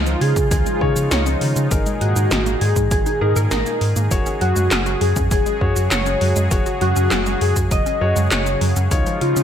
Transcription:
Already playing: analog synth bass C#2, analog synth pad C#3 F3 G#3 D#4 F4, grand piano D#4 F4 C#5, synth bell F4, soft synth lead F4
0.06 synth arpeggio sound F3, closed hi-hat, cabasa
0.21 analog synth bass C#3, soft synth lead G#4, synth bell G#4, open hi-hat
0.36 analog synth bass C#3, synth arpeggio sound C#4, kick, closed hi-hat, cabasa
0.51 analog synth bass C#2, synth arpeggio sound D#3, soft synth lead G#4, synth bell G#4, kick, closed hi-hat, cabasa
0.66 synth arpeggio sound G#3, closed hi-hat, cabasa
0.81 analog synth bass C#3, synth arpeggio sound D#3, grand piano D#4 F4 C#5, kick
0.96 analog synth bass C#3, synth arpeggio sound F3, closed hi-hat, cabasa
1.11 analog synth bass C#2, synth bell C#5, soft synth lead C#5, snare, closed hi-hat, cabasa
1.26 synth arpeggio sound C#4, closed hi-hat, cabasa
1.41 analog synth bass C#3, synth arpeggio sound D#3, open hi-hat
1.56 analog synth bass C#3, synth arpeggio sound G#3, closed hi-hat, cabasa
1.71 analog synth bass G#1, analog synth pad A#2 D#3 G#4, synth arpeggio sound D#3, grand piano D#4 G#4 A#4, kick, closed hi-hat, cabasa
1.86 synth arpeggio sound G#3, closed hi-hat, cabasa
2.01 analog synth bass G#2, soft synth lead F#4, synth bell F#4, closed hi-hat
2.16 analog synth bass G#2, synth arpeggio sound D#4, closed hi-hat, cabasa
2.31 analog synth bass G#1, synth arpeggio sound D#3, snare, closed hi-hat, cabasa
2.46 synth arpeggio sound A#3, closed hi-hat, cabasa
2.61 analog synth bass G#2, synth arpeggio sound D#3, soft synth lead G#4, synth bell G#4, open hi-hat
2.76 analog synth bass G#2, synth arpeggio sound G#3, kick, closed hi-hat, cabasa
2.91 analog synth bass G#1, synth bell G#4, soft synth lead G#4, kick, closed hi-hat, cabasa
3.06 synth arpeggio sound D#4, closed hi-hat, cabasa
3.21 analog synth bass G#2, grand piano D#4 G#4 A#4, synth arpeggio sound G#4
3.36 analog synth bass G#2, synth arpeggio sound A#4, closed hi-hat, cabasa
3.51 analog synth bass G#1, synth arpeggio sound D#4, soft synth lead A#4, synth bell A#4, snare, closed hi-hat, cabasa
3.66 synth arpeggio sound A#3, closed hi-hat, cabasa
3.81 analog synth bass G#2, open hi-hat
3.96 analog synth bass G#2, synth arpeggio sound A#3, closed hi-hat, cabasa
4.11 analog synth bass F#1, analog synth pad C#3 F#3 F#4, synth arpeggio sound F#3, grand piano F#4 G#4 C#5, kick, closed hi-hat, cabasa
4.26 synth arpeggio sound C#4, closed hi-hat, cabasa
4.41 analog synth bass F#2, synth arpeggio sound F#3, synth bell F#4, soft synth lead F#4, closed hi-hat
4.56 analog synth bass F#2, synth arpeggio sound G#3, closed hi-hat, cabasa
4.71 analog synth bass F#1, snare, clap, closed hi-hat, cabasa
4.86 synth arpeggio sound F#4, closed hi-hat, cabasa
5.01 analog synth bass F#2, synth arpeggio sound F#3, synth bell G#4, soft synth lead G#4, open hi-hat
5.16 analog synth bass F#2, synth arpeggio sound C#4, kick, closed hi-hat, cabasa
5.31 analog synth bass F#1, synth arpeggio sound F#3, soft synth lead G#4, synth bell G#4, kick, closed hi-hat, cabasa
5.46 synth arpeggio sound G#3, closed hi-hat, cabasa
5.61 analog synth bass F#2, grand piano F#4 G#4 C#5, kick
5.76 analog synth bass F#2, synth arpeggio sound F#4, closed hi-hat, cabasa
5.91 analog synth bass F#1, synth arpeggio sound F#3, soft synth lead C#5, synth bell C#5, snare, clap, closed hi-hat, cabasa
6.06 synth arpeggio sound C#4, closed hi-hat, cabasa
6.21 analog synth bass F#2, synth arpeggio sound F#3, open hi-hat
6.36 analog synth bass F#2, synth arpeggio sound G#3, closed hi-hat, cabasa
6.51 analog synth bass F#1, grand piano F#4 G#4 C#5, kick, closed hi-hat, cabasa
6.66 synth arpeggio sound F#4, closed hi-hat, cabasa
6.81 analog synth bass F#2, synth arpeggio sound F#3, soft synth lead F#4, synth bell F#4, closed hi-hat
6.96 analog synth bass F#2, synth arpeggio sound C#4, closed hi-hat, cabasa
7.11 analog synth bass F#1, synth arpeggio sound F#3, snare, clap, closed hi-hat, cabasa
7.26 synth arpeggio sound G#3, closed hi-hat, cabasa
7.41 analog synth bass F#2, soft synth lead G#4, synth bell G#4, open hi-hat
7.56 analog synth bass F#2, synth arpeggio sound F#4, kick, closed hi-hat, cabasa
7.71 analog synth bass F#1, synth arpeggio sound F#3, soft synth lead D#5, synth bell D#5, kick, closed hi-hat, cabasa
7.86 synth arpeggio sound C#4, closed hi-hat, cabasa
8.01 analog synth bass F#2, synth arpeggio sound F#3, grand piano F#4 G#4 C#5
8.16 analog synth bass F#2, synth arpeggio sound G#3, closed hi-hat, cabasa
8.31 analog synth bass F#1, soft synth lead C#5, synth bell C#5, snare, clap, closed hi-hat, cabasa
8.46 synth arpeggio sound F#4, closed hi-hat, cabasa
8.61 analog synth bass F#2, synth arpeggio sound F#3, open hi-hat
8.76 analog synth bass F#2, synth arpeggio sound C#4, closed hi-hat, cabasa
8.91 analog synth bass C#2, synth arpeggio sound D#3, analog synth pad F3 G#3 D#4 F4, grand piano D#4 F4 C#5, kick, closed hi-hat, cabasa
9.06 synth arpeggio sound F3, closed hi-hat, cabasa
9.21 analog synth bass C#3, soft synth lead F4, synth bell F4, closed hi-hat
9.36 analog synth bass C#3, synth arpeggio sound C#4, closed hi-hat, cabasa

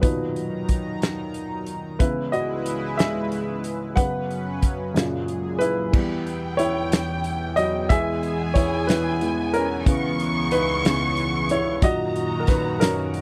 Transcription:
Already playing: analog synth pad F#3
0.02 upright piano A#2 B2 D#3 D#4 B4, analog synth pad D#3 D#4 A#5, kick, closed hi-hat
0.36 closed hi-hat
0.69 kick, closed hi-hat
1.02 snare, closed hi-hat
1.34 closed hi-hat
1.66 closed hi-hat
1.99 upright piano C#3 E3 B3 E4 B4, analog synth pad C#3 G#3 E4 B4, kick, closed hi-hat
2.32 upright piano F#4 D#5, closed hi-hat
2.66 closed hi-hat
2.97 upright piano G#4 E5, snare, closed hi-hat
3.32 closed hi-hat
3.64 closed hi-hat
3.96 upright piano F#2 C#3 B3 B4 F#5, analog synth pad F#2 F#3 C#4 B4, kick, closed hi-hat
4.31 closed hi-hat
4.62 kick, closed hi-hat
4.94 upright piano F#2 A#2 C#3, analog synth pad F#2 A#2 G#4, snare, closed hi-hat
5.28 closed hi-hat
5.59 upright piano E4 B4, closed hi-hat
5.92 analog synth pad E2 E3 B3 G5, upright piano E3 G3 B3, violin section G5, kick, crash
6.27 closed hi-hat
6.57 upright piano E4 C#5, closed hi-hat
6.92 snare, closed hi-hat
7.24 closed hi-hat
7.56 upright piano F#3 D#5, closed hi-hat
7.89 upright piano E3 G#3 B3 G#4 E5, analog synth pad G#4, violin section G#5, kick, closed hi-hat
8.23 closed hi-hat
8.54 upright piano E4 C#5, kick, closed hi-hat
8.87 upright piano E4 B4, snare, closed hi-hat
9.21 upright piano E3 G#3 B3, closed hi-hat
9.53 upright piano C#4 A#4, closed hi-hat
9.86 analog synth pad C#2 C#3 E3, upright piano C#3 E3 B3, violin section C#6, kick, closed hi-hat
10.20 closed hi-hat
10.51 upright piano D#4 B4, closed hi-hat
10.85 upright piano C#3 E3 B3, snare, closed hi-hat
11.17 closed hi-hat
11.49 upright piano E4 C#5, closed hi-hat
11.82 upright piano F#2 A#2 D#3 F#4 D#5, analog synth pad F#2 A#2 D#3 F#4, violin section A#5, kick, closed hi-hat
12.16 closed hi-hat
12.40 upright piano A#4
12.47 upright piano D#4 B4, kick, snare, closed hi-hat
12.80 upright piano C#4 A#4, snare, closed hi-hat
13.14 closed hi-hat

